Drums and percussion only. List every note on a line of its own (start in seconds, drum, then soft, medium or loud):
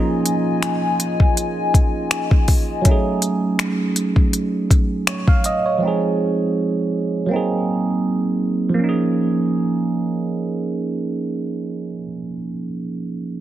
0.26 closed hi-hat medium
0.63 finger snap loud
0.63 closed hi-hat medium
1.00 closed hi-hat medium
1.20 kick medium
1.37 closed hi-hat medium
1.74 kick medium
1.74 closed hi-hat medium
2.11 finger snap loud
2.11 closed hi-hat medium
2.31 kick loud
2.48 kick medium
2.48 open hi-hat medium
2.85 kick loud
2.85 closed hi-hat medium
3.22 closed hi-hat medium
3.59 finger snap loud
3.59 closed hi-hat medium
3.96 closed hi-hat medium
4.16 kick medium
4.33 closed hi-hat medium
4.71 kick loud
4.71 closed hi-hat medium
5.07 finger snap loud
5.07 closed hi-hat medium
5.28 kick loud
5.44 closed hi-hat medium